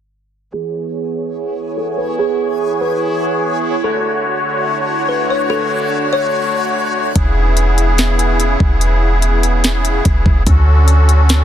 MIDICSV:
0, 0, Header, 1, 6, 480
1, 0, Start_track
1, 0, Tempo, 413793
1, 621, Time_signature, 4, 2, 24, 8
1, 13273, End_track
2, 0, Start_track
2, 0, Title_t, "Synth texture"
2, 0, Program_c, 0, 99
2, 623, Note_on_c, 0, 73, 74
2, 623, Note_on_c, 0, 80, 89
2, 624, Note_on_c, 0, 64, 78
2, 4423, Note_off_c, 0, 73, 0
2, 4423, Note_off_c, 0, 80, 0
2, 4424, Note_off_c, 0, 64, 0
2, 4460, Note_on_c, 0, 62, 81
2, 4460, Note_on_c, 0, 78, 88
2, 4461, Note_on_c, 0, 73, 73
2, 8262, Note_off_c, 0, 62, 0
2, 8262, Note_off_c, 0, 78, 0
2, 8263, Note_off_c, 0, 73, 0
2, 13273, End_track
3, 0, Start_track
3, 0, Title_t, "Kalimba"
3, 0, Program_c, 1, 108
3, 620, Note_on_c, 1, 68, 97
3, 1534, Note_off_c, 1, 68, 0
3, 2058, Note_on_c, 1, 69, 77
3, 2287, Note_off_c, 1, 69, 0
3, 2292, Note_on_c, 1, 71, 68
3, 2524, Note_off_c, 1, 71, 0
3, 2539, Note_on_c, 1, 68, 91
3, 3217, Note_off_c, 1, 68, 0
3, 3260, Note_on_c, 1, 71, 87
3, 3489, Note_off_c, 1, 71, 0
3, 4456, Note_on_c, 1, 69, 92
3, 5372, Note_off_c, 1, 69, 0
3, 5898, Note_on_c, 1, 71, 70
3, 6127, Note_off_c, 1, 71, 0
3, 6152, Note_on_c, 1, 73, 72
3, 6375, Note_off_c, 1, 73, 0
3, 6378, Note_on_c, 1, 69, 104
3, 7056, Note_off_c, 1, 69, 0
3, 7106, Note_on_c, 1, 73, 88
3, 7780, Note_off_c, 1, 73, 0
3, 13273, End_track
4, 0, Start_track
4, 0, Title_t, "Accordion"
4, 0, Program_c, 2, 21
4, 620, Note_on_c, 2, 52, 72
4, 620, Note_on_c, 2, 59, 68
4, 620, Note_on_c, 2, 73, 67
4, 621, Note_on_c, 2, 68, 81
4, 4422, Note_off_c, 2, 52, 0
4, 4422, Note_off_c, 2, 59, 0
4, 4422, Note_off_c, 2, 68, 0
4, 4460, Note_on_c, 2, 57, 66
4, 4461, Note_on_c, 2, 66, 81
4, 4462, Note_on_c, 2, 50, 75
4, 8254, Note_off_c, 2, 73, 0
4, 8262, Note_off_c, 2, 57, 0
4, 8262, Note_off_c, 2, 66, 0
4, 8263, Note_off_c, 2, 50, 0
4, 8300, Note_on_c, 2, 49, 78
4, 8300, Note_on_c, 2, 59, 70
4, 8300, Note_on_c, 2, 64, 68
4, 8300, Note_on_c, 2, 68, 87
4, 12102, Note_off_c, 2, 49, 0
4, 12102, Note_off_c, 2, 59, 0
4, 12102, Note_off_c, 2, 64, 0
4, 12102, Note_off_c, 2, 68, 0
4, 12138, Note_on_c, 2, 69, 83
4, 12139, Note_on_c, 2, 50, 76
4, 12139, Note_on_c, 2, 61, 72
4, 12139, Note_on_c, 2, 66, 67
4, 13273, Note_off_c, 2, 50, 0
4, 13273, Note_off_c, 2, 61, 0
4, 13273, Note_off_c, 2, 66, 0
4, 13273, Note_off_c, 2, 69, 0
4, 13273, End_track
5, 0, Start_track
5, 0, Title_t, "808-style bass"
5, 0, Program_c, 3, 38
5, 8301, Note_on_c, 3, 28, 110
5, 9935, Note_off_c, 3, 28, 0
5, 9979, Note_on_c, 3, 28, 100
5, 11614, Note_off_c, 3, 28, 0
5, 11663, Note_on_c, 3, 28, 106
5, 11892, Note_off_c, 3, 28, 0
5, 11899, Note_on_c, 3, 28, 99
5, 12130, Note_off_c, 3, 28, 0
5, 12141, Note_on_c, 3, 38, 107
5, 13273, Note_off_c, 3, 38, 0
5, 13273, End_track
6, 0, Start_track
6, 0, Title_t, "Drums"
6, 8300, Note_on_c, 9, 42, 89
6, 8302, Note_on_c, 9, 36, 106
6, 8416, Note_off_c, 9, 42, 0
6, 8418, Note_off_c, 9, 36, 0
6, 8778, Note_on_c, 9, 42, 84
6, 8894, Note_off_c, 9, 42, 0
6, 9023, Note_on_c, 9, 42, 71
6, 9139, Note_off_c, 9, 42, 0
6, 9260, Note_on_c, 9, 42, 74
6, 9267, Note_on_c, 9, 38, 104
6, 9376, Note_off_c, 9, 42, 0
6, 9383, Note_off_c, 9, 38, 0
6, 9502, Note_on_c, 9, 42, 64
6, 9618, Note_off_c, 9, 42, 0
6, 9740, Note_on_c, 9, 42, 63
6, 9856, Note_off_c, 9, 42, 0
6, 9979, Note_on_c, 9, 36, 99
6, 10095, Note_off_c, 9, 36, 0
6, 10221, Note_on_c, 9, 42, 86
6, 10337, Note_off_c, 9, 42, 0
6, 10699, Note_on_c, 9, 42, 83
6, 10815, Note_off_c, 9, 42, 0
6, 10943, Note_on_c, 9, 42, 70
6, 11059, Note_off_c, 9, 42, 0
6, 11180, Note_on_c, 9, 42, 74
6, 11187, Note_on_c, 9, 38, 111
6, 11296, Note_off_c, 9, 42, 0
6, 11303, Note_off_c, 9, 38, 0
6, 11423, Note_on_c, 9, 42, 63
6, 11539, Note_off_c, 9, 42, 0
6, 11660, Note_on_c, 9, 42, 66
6, 11663, Note_on_c, 9, 36, 86
6, 11776, Note_off_c, 9, 42, 0
6, 11779, Note_off_c, 9, 36, 0
6, 11899, Note_on_c, 9, 36, 100
6, 12015, Note_off_c, 9, 36, 0
6, 12140, Note_on_c, 9, 42, 89
6, 12141, Note_on_c, 9, 36, 110
6, 12256, Note_off_c, 9, 42, 0
6, 12257, Note_off_c, 9, 36, 0
6, 12617, Note_on_c, 9, 42, 85
6, 12733, Note_off_c, 9, 42, 0
6, 12862, Note_on_c, 9, 42, 69
6, 12978, Note_off_c, 9, 42, 0
6, 13100, Note_on_c, 9, 42, 74
6, 13107, Note_on_c, 9, 38, 110
6, 13216, Note_off_c, 9, 42, 0
6, 13223, Note_off_c, 9, 38, 0
6, 13273, End_track
0, 0, End_of_file